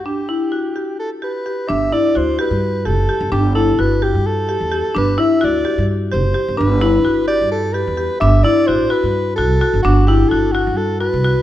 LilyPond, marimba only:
\new Staff \with { instrumentName = "Marimba" } { \time 7/8 \key g \major \tempo 4 = 129 d'8 e'8 fis'8 g'4 g'8 g'8 | d'8 e'8 fis'8 g'4 g'8 g'8 | d'8 e'8 fis'8 g'4 g'8 g'8 | d'8 e'8 fis'8 g'4 g'8 g'8 |
d'8 e'8 fis'8 g'4 g'8 g'8 | d'8 e'8 fis'8 fis'4 fis'8 fis'8 | d'8 e'8 fis'8 fis'4 fis'8 fis'8 | }